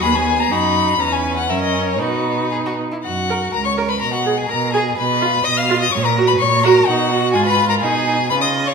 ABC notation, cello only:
X:1
M:2/4
L:1/8
Q:1/4=125
K:B
V:1 name="Cello" clef=bass
D,,2 F,,2 | E,,2 F,,2 | B,,3 z | [K:F#] F,,2 C,,2 |
B,,2 B,,2 | B,,2 B,,2 | A,,2 A,,2 | B,,2 G,,2 |
B,,2 C,2 |]